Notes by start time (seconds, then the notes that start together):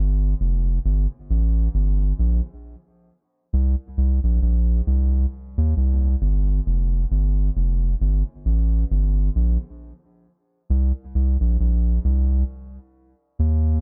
Already playing: G1
0.40 F1
0.85 G1
1.30 A1
1.74 G1
2.19 A#1
3.53 C2
3.97 C2
4.23 A#1
4.42 A#1
4.87 C2
5.57 D#2
5.76 C2
6.21 G1
6.66 F1
7.11 G1
7.56 F1
8.01 G1
8.45 A1
8.91 G1
9.35 A#1
10.70 C2
11.15 C2
11.40 A#1
11.60 A#1
12.04 C2
13.39 D#2